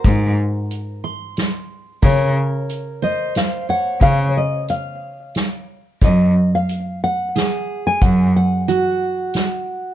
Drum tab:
HH |x-x-x-|x-x-x-|x-x-x-|x-x-x-|
SD |----o-|----o-|----o-|----o-|
BD |o-----|o-----|o-----|o-----|

HH |x-x-x-|
SD |----o-|
BD |o-----|